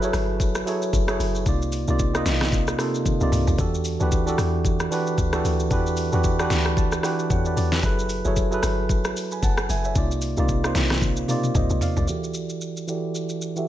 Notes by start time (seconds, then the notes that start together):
Already playing: F#1 E4 G#4 A4 B4
0.00 F#3 E4 G#4 A4, shaker
0.05 C#5
0.13 G1, cross-stick, open hi-hat, shaker
0.40 kick, shaker
0.55 cross-stick, shaker
0.66 F#3 E4 G#4 A4 C#5, open hi-hat, shaker
0.82 shaker
0.93 F#1, kick, shaker
1.08 F#3 E4 G#4 A4 C#5, cross-stick, shaker
1.20 F#1, open hi-hat, shaker
1.35 shaker
1.45 C2 C3 A#3 D#4 F4 D5, kick, shaker
1.62 shaker
1.72 open hi-hat, shaker
1.87 C2 C3 A#3 D#4 F4 D5, shaker
1.99 kick, shaker
2.14 A#3 C4 D#4 F4 D#5, cross-stick, shaker
2.26 B1, snare, open hi-hat, shaker
2.41 cross-stick, snare
2.52 kick, shaker
2.67 cross-stick, shaker
2.78 C3 A#3 D#4 F4 A4, cross-stick, open hi-hat, shaker
2.95 shaker
3.06 kick, high tom, shaker
3.20 C2 C3 A#3 D#4 F4 D5, shaker
3.32 C2, mid tom, open hi-hat, shaker
3.47 A#1, floor tom, shaker
3.57 E2 E3 D4 F#4 G4 A4, kick, shaker
3.74 shaker
3.85 open hi-hat, shaker
4.00 D2 E3 D4 F#4 G4 B4, shaker
4.12 kick, shaker
4.26 E3 D4 F#4 G4 A4, shaker
4.38 E2, cross-stick, open hi-hat, shaker
4.65 kick, shaker
4.80 cross-stick, shaker
4.91 E3 D4 F#4 G4 B4, open hi-hat, shaker
5.07 shaker
5.18 D2, kick, shaker
5.32 E3 D4 F#4 G4 A4, cross-stick, shaker
5.44 D2, open hi-hat, shaker
5.60 shaker
5.70 E2 E3 D4 F#4 G4 B4, kick, shaker
5.87 shaker
5.97 open hi-hat, shaker
6.12 E2 E3 D4 F#4 G4 B4, shaker
6.24 kick, shaker
6.38 E3 D4 F#4 G4 B4, cross-stick, shaker
6.50 D2 B5, snare, open hi-hat, shaker
6.66 cross-stick
6.77 A5, kick, shaker
6.92 cross-stick, shaker
7.03 E3 D4 F#4 G4 B4 G5, cross-stick, open hi-hat, shaker
7.19 shaker
7.30 E2 A4 C#5 F#5, kick, shaker
7.45 B4 D5, shaker
7.57 E2 D5, open hi-hat, shaker
7.72 G4 B4, snare, shaker
7.82 F#1 F#3 E4 G#4 A4 B4, kick, shaker
7.99 shaker
8.09 open hi-hat, shaker
8.25 F#1 F#3 E4 G#4 A4 C#5, shaker
8.36 kick, shaker
8.51 F#3 E4 G#4 A4 B4, shaker
8.63 G1, cross-stick, open hi-hat, shaker
8.89 kick, shaker
9.04 cross-stick, shaker
9.17 open hi-hat, shaker
9.31 G#5 B5, shaker
9.43 F#1 F#5 A5, kick, shaker
9.58 cross-stick, shaker
9.69 F#1 E5 G#5, open hi-hat, shaker
9.84 C#5 E5, shaker
9.95 C2 C3 A#3 D#4 F4 D5, kick, shaker
10.11 shaker
10.22 open hi-hat, shaker
10.37 C2 C3 A#3 D#4 F4 D5, shaker
10.49 kick, shaker
10.63 A#3 C4 D#4 F4 C5, cross-stick, shaker
10.75 B1, snare, open hi-hat, shaker
10.90 cross-stick, snare
11.02 kick, high tom, shaker
11.17 shaker
11.27 C3 A#3 D#4 F4 D5, open hi-hat, mid tom, shaker
11.44 mid tom, shaker
11.55 C2 C5 D#5, kick, mid tom, shaker
11.70 C2, shaker
11.81 D5 F5, floor tom, open hi-hat, shaker
11.97 A#1 A#4 D5, floor tom, shaker
12.08 E3 E4 F#4 G4 A4 D5, shaker
12.24 shaker
12.34 shaker
12.49 shaker
12.61 shaker
12.77 shaker
12.87 E3 E4 F#4 G4 A4 D5, shaker
13.15 shaker
13.29 shaker
13.41 shaker
13.56 E3 E4 F#4 G4 A4 E5, shaker